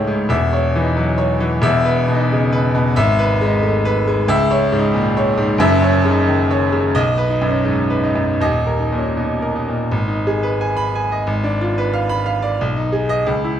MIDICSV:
0, 0, Header, 1, 2, 480
1, 0, Start_track
1, 0, Tempo, 666667
1, 211, Time_signature, 2, 2, 24, 8
1, 5011, Tempo, 704225
1, 5491, Tempo, 754717
1, 6931, Tempo, 673401
1, 9547, End_track
2, 0, Start_track
2, 0, Title_t, "Grand piano"
2, 0, Program_c, 0, 0
2, 0, Control_c, 0, 64, 127
2, 0, Note_on_c, 0, 37, 104
2, 0, Note_on_c, 0, 44, 84
2, 0, Note_on_c, 0, 45, 73
2, 0, Note_on_c, 0, 63, 73
2, 0, Note_on_c, 0, 73, 86
2, 0, Note_on_c, 0, 76, 111
2, 53, Note_off_c, 0, 44, 0
2, 53, Note_on_c, 0, 44, 92
2, 147, Note_off_c, 0, 73, 0
2, 178, Note_off_c, 0, 37, 0
2, 209, Note_on_c, 0, 28, 99
2, 212, Note_off_c, 0, 44, 0
2, 214, Note_on_c, 0, 40, 104
2, 215, Note_off_c, 0, 76, 0
2, 215, Note_on_c, 0, 76, 108
2, 222, Control_c, 0, 64, 0
2, 225, Note_off_c, 0, 45, 0
2, 227, Note_off_c, 0, 63, 0
2, 358, Control_c, 0, 64, 127
2, 380, Note_on_c, 0, 73, 92
2, 469, Note_off_c, 0, 76, 0
2, 545, Note_on_c, 0, 52, 88
2, 582, Note_on_c, 0, 63, 73
2, 632, Note_off_c, 0, 73, 0
2, 697, Note_off_c, 0, 63, 0
2, 697, Note_on_c, 0, 54, 83
2, 794, Note_off_c, 0, 52, 0
2, 848, Note_on_c, 0, 73, 92
2, 854, Note_off_c, 0, 54, 0
2, 1011, Note_on_c, 0, 52, 96
2, 1104, Note_off_c, 0, 73, 0
2, 1139, Note_off_c, 0, 28, 0
2, 1142, Note_off_c, 0, 40, 0
2, 1165, Note_on_c, 0, 28, 109
2, 1169, Note_off_c, 0, 52, 0
2, 1172, Note_on_c, 0, 76, 124
2, 1175, Note_on_c, 0, 40, 119
2, 1180, Control_c, 0, 64, 0
2, 1317, Control_c, 0, 64, 127
2, 1334, Note_on_c, 0, 71, 94
2, 1426, Note_off_c, 0, 76, 0
2, 1499, Note_on_c, 0, 47, 94
2, 1543, Note_on_c, 0, 63, 82
2, 1587, Note_off_c, 0, 71, 0
2, 1654, Note_off_c, 0, 63, 0
2, 1672, Note_on_c, 0, 49, 83
2, 1747, Note_off_c, 0, 47, 0
2, 1816, Note_off_c, 0, 49, 0
2, 1818, Note_on_c, 0, 71, 99
2, 1978, Note_on_c, 0, 47, 105
2, 2061, Note_off_c, 0, 71, 0
2, 2086, Note_off_c, 0, 28, 0
2, 2091, Note_off_c, 0, 40, 0
2, 2126, Note_off_c, 0, 47, 0
2, 2130, Control_c, 0, 64, 0
2, 2133, Note_on_c, 0, 76, 127
2, 2137, Note_on_c, 0, 32, 126
2, 2249, Control_c, 0, 64, 127
2, 2297, Note_on_c, 0, 71, 103
2, 2379, Note_off_c, 0, 76, 0
2, 2457, Note_on_c, 0, 56, 105
2, 2491, Note_on_c, 0, 63, 84
2, 2542, Note_off_c, 0, 71, 0
2, 2604, Note_off_c, 0, 63, 0
2, 2612, Note_on_c, 0, 57, 92
2, 2703, Note_off_c, 0, 56, 0
2, 2765, Note_off_c, 0, 57, 0
2, 2774, Note_on_c, 0, 71, 106
2, 2934, Note_on_c, 0, 56, 111
2, 3022, Note_off_c, 0, 71, 0
2, 3059, Note_off_c, 0, 32, 0
2, 3084, Note_on_c, 0, 37, 126
2, 3085, Note_off_c, 0, 56, 0
2, 3089, Control_c, 0, 64, 0
2, 3089, Note_on_c, 0, 76, 127
2, 3211, Control_c, 0, 64, 127
2, 3246, Note_on_c, 0, 73, 107
2, 3337, Note_off_c, 0, 76, 0
2, 3401, Note_on_c, 0, 44, 103
2, 3446, Note_on_c, 0, 63, 92
2, 3494, Note_off_c, 0, 73, 0
2, 3557, Note_on_c, 0, 46, 91
2, 3559, Note_off_c, 0, 63, 0
2, 3651, Note_off_c, 0, 44, 0
2, 3714, Note_off_c, 0, 46, 0
2, 3721, Note_on_c, 0, 73, 98
2, 3870, Note_on_c, 0, 44, 105
2, 3973, Note_off_c, 0, 73, 0
2, 4007, Note_off_c, 0, 37, 0
2, 4020, Note_on_c, 0, 30, 118
2, 4031, Note_off_c, 0, 44, 0
2, 4031, Note_on_c, 0, 42, 127
2, 4031, Note_on_c, 0, 76, 127
2, 4046, Control_c, 0, 64, 0
2, 4166, Control_c, 0, 64, 127
2, 4191, Note_on_c, 0, 73, 100
2, 4290, Note_off_c, 0, 76, 0
2, 4356, Note_on_c, 0, 49, 104
2, 4394, Note_on_c, 0, 63, 86
2, 4451, Note_off_c, 0, 73, 0
2, 4517, Note_off_c, 0, 63, 0
2, 4520, Note_on_c, 0, 51, 84
2, 4616, Note_off_c, 0, 49, 0
2, 4682, Note_off_c, 0, 51, 0
2, 4684, Note_on_c, 0, 73, 97
2, 4840, Note_on_c, 0, 49, 99
2, 4944, Note_off_c, 0, 73, 0
2, 4974, Note_off_c, 0, 30, 0
2, 4979, Note_off_c, 0, 42, 0
2, 5003, Note_on_c, 0, 75, 121
2, 5006, Note_off_c, 0, 49, 0
2, 5007, Note_on_c, 0, 35, 110
2, 5020, Control_c, 0, 64, 0
2, 5121, Control_c, 0, 64, 127
2, 5159, Note_on_c, 0, 71, 92
2, 5242, Note_on_c, 0, 63, 85
2, 5258, Note_off_c, 0, 75, 0
2, 5322, Note_on_c, 0, 42, 90
2, 5371, Note_on_c, 0, 61, 72
2, 5420, Note_off_c, 0, 71, 0
2, 5438, Note_off_c, 0, 63, 0
2, 5480, Note_on_c, 0, 44, 75
2, 5481, Note_on_c, 0, 63, 82
2, 5491, Note_off_c, 0, 61, 0
2, 5580, Note_off_c, 0, 42, 0
2, 5641, Note_off_c, 0, 44, 0
2, 5642, Note_on_c, 0, 71, 81
2, 5673, Note_off_c, 0, 63, 0
2, 5727, Note_on_c, 0, 63, 81
2, 5802, Note_on_c, 0, 42, 86
2, 5902, Note_off_c, 0, 71, 0
2, 5921, Note_off_c, 0, 63, 0
2, 5943, Note_off_c, 0, 35, 0
2, 5962, Note_on_c, 0, 27, 86
2, 5967, Note_on_c, 0, 39, 95
2, 5968, Note_off_c, 0, 42, 0
2, 5968, Note_on_c, 0, 75, 104
2, 5983, Control_c, 0, 64, 0
2, 6082, Control_c, 0, 64, 127
2, 6129, Note_on_c, 0, 70, 78
2, 6213, Note_on_c, 0, 63, 69
2, 6231, Note_off_c, 0, 75, 0
2, 6290, Note_on_c, 0, 46, 78
2, 6327, Note_on_c, 0, 61, 65
2, 6390, Note_off_c, 0, 70, 0
2, 6407, Note_off_c, 0, 63, 0
2, 6447, Note_on_c, 0, 47, 69
2, 6448, Note_on_c, 0, 63, 75
2, 6451, Note_off_c, 0, 61, 0
2, 6549, Note_off_c, 0, 46, 0
2, 6608, Note_on_c, 0, 70, 77
2, 6611, Note_off_c, 0, 47, 0
2, 6644, Note_off_c, 0, 63, 0
2, 6692, Note_on_c, 0, 63, 75
2, 6776, Note_on_c, 0, 46, 73
2, 6865, Note_off_c, 0, 70, 0
2, 6882, Note_off_c, 0, 63, 0
2, 6900, Note_off_c, 0, 27, 0
2, 6902, Note_off_c, 0, 39, 0
2, 6923, Note_on_c, 0, 32, 95
2, 6929, Note_off_c, 0, 46, 0
2, 6944, Control_c, 0, 64, 0
2, 7038, Note_on_c, 0, 63, 75
2, 7053, Control_c, 0, 64, 127
2, 7174, Note_on_c, 0, 68, 82
2, 7244, Note_off_c, 0, 63, 0
2, 7289, Note_on_c, 0, 71, 85
2, 7372, Note_off_c, 0, 68, 0
2, 7416, Note_on_c, 0, 80, 86
2, 7487, Note_off_c, 0, 71, 0
2, 7528, Note_on_c, 0, 83, 111
2, 7609, Note_off_c, 0, 80, 0
2, 7662, Note_on_c, 0, 80, 92
2, 7722, Note_off_c, 0, 83, 0
2, 7780, Note_on_c, 0, 75, 84
2, 7848, Note_off_c, 0, 80, 0
2, 7861, Note_off_c, 0, 32, 0
2, 7887, Note_on_c, 0, 32, 100
2, 7895, Note_off_c, 0, 75, 0
2, 7907, Control_c, 0, 64, 0
2, 8007, Note_on_c, 0, 62, 86
2, 8018, Control_c, 0, 64, 127
2, 8132, Note_on_c, 0, 65, 86
2, 8197, Note_off_c, 0, 62, 0
2, 8250, Note_on_c, 0, 71, 90
2, 8317, Note_off_c, 0, 65, 0
2, 8362, Note_on_c, 0, 77, 99
2, 8435, Note_off_c, 0, 71, 0
2, 8475, Note_on_c, 0, 83, 121
2, 8550, Note_off_c, 0, 77, 0
2, 8592, Note_on_c, 0, 77, 101
2, 8666, Note_off_c, 0, 83, 0
2, 8710, Note_on_c, 0, 74, 89
2, 8784, Note_off_c, 0, 77, 0
2, 8803, Note_off_c, 0, 32, 0
2, 8831, Note_off_c, 0, 74, 0
2, 8843, Note_on_c, 0, 35, 99
2, 8847, Control_c, 0, 64, 0
2, 8953, Note_on_c, 0, 63, 81
2, 8955, Control_c, 0, 64, 127
2, 9066, Note_on_c, 0, 68, 85
2, 9146, Note_off_c, 0, 63, 0
2, 9188, Note_on_c, 0, 75, 110
2, 9265, Note_off_c, 0, 68, 0
2, 9309, Note_off_c, 0, 35, 0
2, 9310, Note_on_c, 0, 37, 96
2, 9315, Note_off_c, 0, 75, 0
2, 9333, Control_c, 0, 64, 0
2, 9437, Note_on_c, 0, 64, 75
2, 9455, Control_c, 0, 64, 127
2, 9547, Note_off_c, 0, 37, 0
2, 9547, Note_off_c, 0, 64, 0
2, 9547, End_track
0, 0, End_of_file